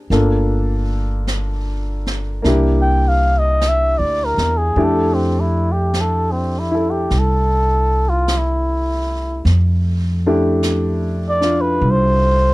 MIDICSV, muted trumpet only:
0, 0, Header, 1, 2, 480
1, 0, Start_track
1, 0, Key_signature, -1, "major"
1, 0, Tempo, 1162791
1, 44, Time_signature, 4, 2, 24, 8
1, 2444, Tempo, 1178782
1, 5139, End_track
2, 0, Start_track
2, 0, Title_t, "Muted trumpet"
2, 0, Program_c, 0, 59
2, 1161, Note_on_c, 0, 79, 74
2, 1273, Note_on_c, 0, 77, 72
2, 1280, Note_off_c, 0, 79, 0
2, 1397, Note_on_c, 0, 75, 70
2, 1404, Note_off_c, 0, 77, 0
2, 1521, Note_on_c, 0, 76, 80
2, 1527, Note_off_c, 0, 75, 0
2, 1643, Note_on_c, 0, 74, 67
2, 1649, Note_off_c, 0, 76, 0
2, 1753, Note_on_c, 0, 70, 73
2, 1759, Note_off_c, 0, 74, 0
2, 1888, Note_on_c, 0, 68, 62
2, 1894, Note_off_c, 0, 70, 0
2, 1997, Note_on_c, 0, 69, 72
2, 2003, Note_off_c, 0, 68, 0
2, 2123, Note_on_c, 0, 60, 52
2, 2129, Note_off_c, 0, 69, 0
2, 2229, Note_on_c, 0, 64, 59
2, 2235, Note_off_c, 0, 60, 0
2, 2361, Note_on_c, 0, 67, 64
2, 2367, Note_off_c, 0, 64, 0
2, 2480, Note_on_c, 0, 69, 77
2, 2486, Note_off_c, 0, 67, 0
2, 2606, Note_on_c, 0, 60, 56
2, 2612, Note_off_c, 0, 69, 0
2, 2716, Note_on_c, 0, 64, 65
2, 2722, Note_off_c, 0, 60, 0
2, 2844, Note_on_c, 0, 67, 61
2, 2850, Note_off_c, 0, 64, 0
2, 2962, Note_on_c, 0, 69, 72
2, 2968, Note_off_c, 0, 67, 0
2, 3329, Note_on_c, 0, 65, 69
2, 3335, Note_off_c, 0, 69, 0
2, 3445, Note_on_c, 0, 64, 56
2, 3451, Note_off_c, 0, 65, 0
2, 3900, Note_off_c, 0, 64, 0
2, 4632, Note_on_c, 0, 74, 74
2, 4761, Note_on_c, 0, 71, 68
2, 4767, Note_off_c, 0, 74, 0
2, 4883, Note_on_c, 0, 72, 71
2, 4889, Note_off_c, 0, 71, 0
2, 5139, Note_off_c, 0, 72, 0
2, 5139, End_track
0, 0, End_of_file